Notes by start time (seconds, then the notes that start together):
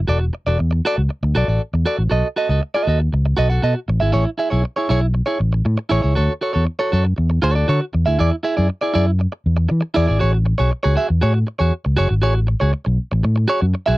0.07 E1 F#4 A4 D5
0.19 muted clean electric guitar stroke
0.33 muted clean electric guitar stroke
0.47 E1 F#4 A4 D5
0.59 E2, muted clean electric guitar stroke
0.71 muted clean electric guitar stroke
0.85 F#4 A4 D5
0.97 C#2, muted clean electric guitar stroke
1.09 muted clean electric guitar stroke
1.23 D2, muted clean electric guitar stroke
1.35 B1 F#4 A4 D5
1.48 A1 D5
1.74 E2, muted clean electric guitar stroke
1.86 F#4 A4 D5
1.98 A1, muted clean electric guitar stroke
2.10 B1 F#4 A4 D#5
2.36 F#4 A4 D#5
2.49 C#2 F#4 A4 D#5
2.62 muted clean electric guitar stroke
2.74 F#4 A4 D#5
2.87 D#2 F#4 A4 D#5
3.13 C#2, muted clean electric guitar stroke
3.26 muted clean electric guitar stroke
3.37 B1 F#4 A4 D#5
3.50 F#4 A4 F#5
3.62 B2 F#4 A4 D#5
3.75 muted clean electric guitar stroke
3.88 A1, muted clean electric guitar stroke
4.00 G#1 E4 G#4 E5
4.12 A1 E4 G#4 C#5
4.25 muted clean electric guitar stroke
4.38 E4 G#4 E5
4.50 B1 E4 G#4 C#5
4.64 muted clean electric guitar stroke
4.76 E4 G#4 C#5
4.89 B1 E4 G#4 C#5
5.01 muted clean electric guitar stroke
5.14 muted clean electric guitar stroke
5.26 E4 G#4 C#5
5.39 A1, muted clean electric guitar stroke
5.53 muted clean electric guitar stroke
5.65 A2, muted clean electric guitar stroke
5.78 muted clean electric guitar stroke
5.89 A1 E4 G#4 C#5
6.02 C#2 E4 G#4 C#5
6.15 D2 F#4 A4 C#5
6.41 F#4 A4 C#5
6.53 E2 F#4 A4 C#5
6.65 muted clean electric guitar stroke
6.79 F#4 A4 C#5
6.92 F#2 F#4 A4 C#5
7.05 muted clean electric guitar stroke
7.16 E2, muted clean electric guitar stroke
7.30 muted clean electric guitar stroke
7.42 D2 F#4 A4 C#5
7.55 F#4 A4 D5
7.68 D3 F#4 A4 C#5
7.81 muted clean electric guitar stroke
7.93 E2, muted clean electric guitar stroke
8.06 D2 E4 G#4 E5
8.19 E2 E4 G#4 D5
8.31 muted clean electric guitar stroke
8.43 E4 G#4 E5
8.57 F#2 E4 G#4 D5
8.69 muted clean electric guitar stroke
8.81 E4 G#4 D5
8.94 F#2 E4 G#4 D5
9.07 muted clean electric guitar stroke
9.19 muted clean electric guitar stroke
9.32 muted clean electric guitar stroke
9.46 E2
9.57 muted clean electric guitar stroke
9.69 E3, muted clean electric guitar stroke
9.81 muted clean electric guitar stroke
9.94 E2 E4 G#4 D5
10.07 G#1 E4 G#4 D5
10.19 A1 F#4 G#4 C#5
10.33 muted clean electric guitar stroke
10.45 muted clean electric guitar stroke
10.58 B1 F#4 G#4 C#5
10.71 muted clean electric guitar stroke
10.83 C#2 F#4 G#4 C#5
10.95 F#4 G#4 E5
11.09 E2, muted clean electric guitar stroke
11.21 A2 F#4 G#4 C#5
11.34 muted clean electric guitar stroke
11.47 muted clean electric guitar stroke
11.59 E2 F#4 G#4 C#5
11.85 C#2, muted clean electric guitar stroke
11.97 F#1 F#4 G#4 C#5
12.09 G#1, muted clean electric guitar stroke
12.22 A1 F#4 G#4 C#5
12.35 muted clean electric guitar stroke
12.47 muted clean electric guitar stroke
12.60 C#2 F#4 G#4 C#5
12.73 muted clean electric guitar stroke
12.85 B1, muted clean electric guitar stroke
13.12 A1, muted clean electric guitar stroke
13.23 A2, muted clean electric guitar stroke
13.36 muted clean electric guitar stroke
13.48 F#4 G#4 C#5
13.62 F#2, muted clean electric guitar stroke
13.74 muted clean electric guitar stroke
13.86 B1 F#4 G#4 E5